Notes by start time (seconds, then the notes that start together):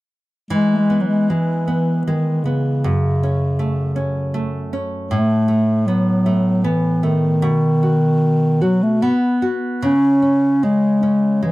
0.50 E3 G#3
0.74 G#3 A3
0.90 B3
1.01 F#3 G#3
1.30 E3 G#3
1.68 B3
2.06 D#3 G#3
2.44 C#3 B3
2.84 F#2
3.23 C#4
3.59 A3
3.96 C#4
4.34 A3
4.73 C#4
5.11 A2 A3
5.48 A3
5.87 F#3 B3
6.26 A3
6.64 E3 B3
7.03 D#3 A3
7.42 B2
7.83 F#4
8.61 F#3 F#4
8.83 A3
9.02 B3
9.42 F#4
9.82 C#3 C#4
10.22 C#4
10.63 G#3
11.03 C#4
11.43 E3 G#3